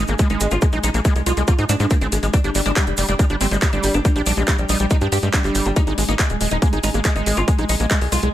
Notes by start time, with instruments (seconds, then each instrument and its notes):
Already playing: analog synth pad G#4 D#5 G#5
0.07 analog synth bass G#1, oud G#3, acid bass A#3, closed hi-hat, shaker
0.19 acid bass G#3, oud G#3, kick, closed hi-hat, shaker
0.30 analog synth bass G#1, acid bass G#3, oud D#4, closed hi-hat, shaker
0.40 analog synth bass G#1, oud G#3, closed hi-hat, shaker
0.51 analog synth bass G#1, acid bass D#4, oud F4, closed hi-hat, shaker
0.61 oud G#3, acid bass G#3, kick, closed hi-hat, shaker
0.72 analog synth bass A#1, oud G#3, acid bass D#4, closed hi-hat, shaker
0.83 analog synth bass A#1, acid bass G#3, oud D#4, closed hi-hat, shaker
0.94 analog synth bass A#1, oud G#3, acid bass A#3, closed hi-hat, shaker
1.05 acid bass G#3, oud G#3, kick, closed hi-hat, shaker
1.16 analog synth bass C2, oud G#3, closed hi-hat, shaker
1.26 analog synth bass C2, acid bass G#3, oud F4, closed hi-hat, shaker
1.37 analog synth bass C2, oud G#3, acid bass G#3, closed hi-hat, shaker
1.48 acid bass A#3, oud F4, kick, closed hi-hat, shaker
1.58 analog synth bass G#2, oud G#3, acid bass D#4, closed hi-hat, shaker
1.69 analog synth bass G#2, acid bass G#3, oud D4, closed hi-hat, shaker
1.80 analog synth bass G#2, oud G#3, acid bass G#3, closed hi-hat, shaker
1.90 oud A#3, acid bass C4, kick, closed hi-hat, shaker
2.01 analog synth bass G#1, oud G#3, acid bass C4, closed hi-hat, shaker
2.12 analog synth bass G#1, oud G#3, closed hi-hat, shaker
2.23 analog synth bass G#1, oud G#3, acid bass G#3, closed hi-hat, shaker
2.33 acid bass G3, oud D4, analog synth pad G4, kick, closed hi-hat, shaker
2.44 analog synth bass G1, oud G3, acid bass D4, closed hi-hat, shaker
2.50 analog synth pad D5
2.55 analog synth bass G1, oud G3, acid bass G3, open hi-hat, shaker
2.66 analog synth bass G1, acid bass G#3, oud D4, closed hi-hat, shaker
2.76 acid bass G3, oud G3, kick, clap, closed hi-hat, shaker
2.82 analog synth pad G5
2.87 analog synth bass F1, oud G3, closed hi-hat, shaker
2.97 analog synth bass F1, oud G3, acid bass G3, open hi-hat, shaker
3.08 analog synth bass F1, acid bass G3, oud D4, closed hi-hat, shaker
3.19 oud G3, acid bass G#3, kick, closed hi-hat, shaker
3.30 analog synth bass G1, oud G3, acid bass D4, closed hi-hat, shaker
3.41 analog synth bass G1, acid bass G3, oud C4, open hi-hat, shaker
3.51 analog synth bass G1, oud G3, acid bass G#3, closed hi-hat, shaker
3.62 oud G3, acid bass G3, kick, clap, closed hi-hat, shaker
3.73 analog synth bass G1, acid bass G3, oud D4, closed hi-hat, shaker
3.83 analog synth bass G1, oud G3, open hi-hat, shaker
3.94 analog synth bass G1, oud D4, acid bass D4, closed hi-hat, shaker
4.05 oud G3, acid bass G3, kick, closed hi-hat, shaker
4.16 analog synth bass A#1, oud G3, acid bass D4, closed hi-hat, shaker
4.26 analog synth bass A#1, acid bass G3, oud D4, open hi-hat, shaker
4.37 analog synth bass A#1, oud G3, acid bass G#3, closed hi-hat, shaker
4.48 acid bass G3, oud G3, kick, clap, closed hi-hat, shaker
4.58 analog synth bass A#1, oud G3, closed hi-hat, shaker
4.69 analog synth bass A#1, acid bass G3, oud D#4, open hi-hat, shaker
4.80 analog synth bass A#1, acid bass G3, oud G3, closed hi-hat, shaker
4.90 acid bass G#3, oud D#4, kick, closed hi-hat, shaker
5.01 analog synth bass G2, oud G3, acid bass D4, closed hi-hat, shaker
5.12 analog synth bass G2, acid bass G3, oud G4, open hi-hat, shaker
5.22 analog synth bass G2, oud G3, acid bass G#3, closed hi-hat, shaker
5.34 acid bass G3, oud D4, kick, clap, closed hi-hat, shaker
5.44 analog synth bass G1, acid bass G3, oud G3, clap, closed hi-hat, shaker
5.55 analog synth bass G1, oud G3, open hi-hat, shaker
5.65 analog synth bass G1, oud G3, acid bass D4, closed hi-hat, shaker
5.76 acid bass G#3, oud D#4, analog synth pad G#4, kick, closed hi-hat, shaker
5.87 analog synth bass G#1, oud G#3, acid bass D#4, closed hi-hat, shaker
5.98 analog synth bass G#1, oud G#3, acid bass G#3, open hi-hat, shaker
6.08 analog synth bass G#1, acid bass A#3, oud D#4, analog synth pad G#5, closed hi-hat, shaker
6.19 oud G#3, acid bass G#3, kick, clap, closed hi-hat, shaker
6.29 analog synth bass D#1, oud G#3, analog synth pad D#5, closed hi-hat, shaker
6.41 analog synth bass D#1, oud G#3, acid bass G#3, open hi-hat, shaker
6.51 analog synth bass D#1, acid bass G#3, oud D#4, closed hi-hat, shaker
6.62 oud G#3, acid bass A#3, kick, closed hi-hat, shaker
6.73 analog synth bass G#1, oud G#3, acid bass D#4, closed hi-hat, shaker
6.83 analog synth bass G#1, acid bass G#3, oud D#4, open hi-hat, shaker
6.94 analog synth bass G#1, oud G#3, acid bass A#3, closed hi-hat, shaker
7.04 oud G#3, acid bass G#3, kick, clap, closed hi-hat, shaker
7.16 analog synth bass G#1, acid bass G#3, oud D#4, closed hi-hat, shaker
7.26 analog synth bass G#1, oud G#3, open hi-hat, shaker
7.37 analog synth bass G#1, acid bass D#4, oud F4, closed hi-hat, shaker
7.48 oud G#3, acid bass G#3, kick, closed hi-hat, shaker
7.58 analog synth bass A#1, oud G#3, acid bass D#4, closed hi-hat, shaker
7.69 analog synth bass A#1, acid bass G#3, oud D#4, open hi-hat, shaker
7.80 analog synth bass A#1, oud G#3, acid bass A#3, closed hi-hat, shaker
7.91 acid bass G#3, oud G#3, kick, clap, closed hi-hat, shaker
8.01 analog synth bass C2, oud G#3, open hi-hat, shaker
8.12 analog synth bass C2, acid bass G#3, oud F4, open hi-hat, shaker
8.22 analog synth bass C2, acid bass G#3, oud G#3, closed hi-hat, shaker